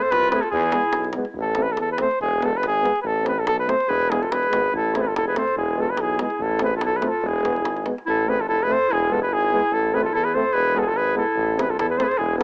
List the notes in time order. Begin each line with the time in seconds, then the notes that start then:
0.02 A4 C5
0.10 C2 F4 B4, davul high
0.24 davul high
0.31 A3 C4 G#4 B4, davul high
0.41 F4 A4, davul high
0.51 E2 E4 G#4, davul low
0.63 davul high
0.72 G#3 B3, davul high
0.93 B1, davul high
1.04 davul high
1.13 B3, davul high
1.17 G#3
1.25 davul high
1.34 A1, davul low
1.41 A4
1.55 A3 C4, davul high
1.62 B4
1.72 A4
1.77 E2 A4, davul high
1.92 B4
1.98 A3 C4 C5, davul high
2.11 davul high
2.20 E1 G#4, davul low
2.41 G#3 B3 A4, davul high
2.57 B4
2.62 G#1, davul high
2.67 G#4
2.82 G#3 B3, davul high
2.96 davul high
3.01 A1 B4, davul low
3.06 A4
3.23 A3 C4, davul high
3.28 B4
3.39 A4
3.46 B1 A4, davul high
3.59 B4
3.66 A3 C4 C5, davul high
3.80 davul high
3.88 E1 G#4 B4, davul low
4.02 davul high
4.09 G#3 B3 E4 G#4, davul high
4.22 F4 A4, davul high
4.29 E1 G#4 B4, davul high
4.43 davul high
4.50 G#1 G#3 B3, davul high
4.72 A1 E4, davul low
4.76 A4
4.94 A3 C4 G#4 A4 C5, davul high
5.01 G#4 B4
5.05 F4 A4
5.15 F1 E4 A4, davul high
5.26 G#4 B4
5.35 A3 C4 A4 C5, davul high
5.48 davul high
5.56 E1 E4 G#4, davul low
5.76 G#3 B3 F4
5.81 A4
5.90 G#4 B4
5.97 B1 E4 G#4, davul high
6.18 G#3 B3 E4 G#4, davul high
6.30 davul high
6.39 A1 E4 A4, davul low
6.59 A3 C4 G#4, davul high
6.64 B4
6.75 F4 A4
6.81 B1 E4 A4, davul high
6.94 G#4 B4
7.01 A3 C4 F4, davul high
7.09 A4
7.22 E1 E4, davul low
7.28 G#4
7.42 G#3 B3, davul high
7.56 davul high
7.65 G#1, davul high
7.77 davul high
7.85 G#3 B3, davul high
7.98 davul high
8.06 A1 E4 A4
8.26 A3 C4 G#4 B4
8.38 F4 A4
8.48 F1 E4 A4
8.60 G#4 B4
8.68 A3 C4 A4
8.72 C5
8.89 E1 E4
8.93 G#4
9.09 G#3 B3 F4 A4
9.20 G#4 B4
9.29 G#1 E4
9.33 G#4
9.52 G#3 B3
9.71 A1 E4 A4
9.91 A3 C4 G#4 B4
10.01 F4 A4
10.12 E2 E4 A4
10.24 G#4 B4
10.33 A3 C4 A4 C5
10.52 E1 G#4 B4
10.74 G#3 B3 E4 F4 G#4 A4
10.80 G#4
10.86 F4 A4
10.94 G#1 G#4 B4
11.15 G#3 B3 E4 A4
11.36 A1, davul low
11.57 A3 C4 G#4 B4, davul high
11.64 G#4
11.69 F4 A4
11.77 E2 E4 A4, davul high
11.90 G#4 B4
11.98 A3 C4 A4 C5, davul high
12.02 G#4 B4
12.08 A4 C5, davul high
12.18 E1 E4 G#4, davul low
12.38 G#3 B3 A4